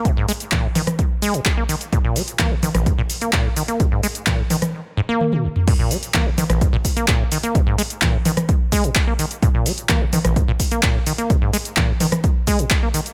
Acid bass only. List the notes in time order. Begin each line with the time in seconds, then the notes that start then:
0.05 A#2
0.17 G#2
0.28 G#3
0.52 A#2
0.64 G#2
0.75 D#3
1.22 G#3
1.34 A#2
1.57 A#3
1.69 D#3
1.92 A#2
2.04 A#2
2.16 G#3
2.39 A#3
2.51 G#2
2.63 D#3
2.75 A#1
2.86 A#2
2.98 A#2
3.21 A#3
3.33 A#2
3.45 G#2
3.56 D#3
3.68 A#3
3.80 A#2
3.92 G#2
4.03 G#3
4.27 A#2
4.39 G#2
4.50 D#3
4.97 G#2
5.09 A#3
5.32 A#2
5.44 A#1
5.67 A#2
5.79 A#2
5.91 G#3
6.14 A#3
6.26 G#2
6.38 D#3
6.50 A#1
6.61 A#2
6.73 A#2
6.96 A#3
7.08 A#2
7.20 G#2
7.32 D#3
7.43 A#3
7.55 A#2
7.67 G#2
7.78 G#3
8.02 A#2
8.14 G#2
8.25 D#3
8.72 G#3
8.84 A#2
9.07 A#3
9.19 D#3
9.42 A#2
9.54 A#2
9.66 G#3
9.89 A#3
10.01 G#2
10.13 D#3
10.25 A#1
10.36 A#2
10.48 A#2
10.72 A#3
10.83 A#2
10.95 G#2
11.07 D#3
11.18 A#3
11.30 A#2
11.42 G#2
11.53 G#3
11.77 A#2
11.89 G#2
12.00 D#3
12.47 G#3
12.59 A#2
12.83 A#3
12.94 D#3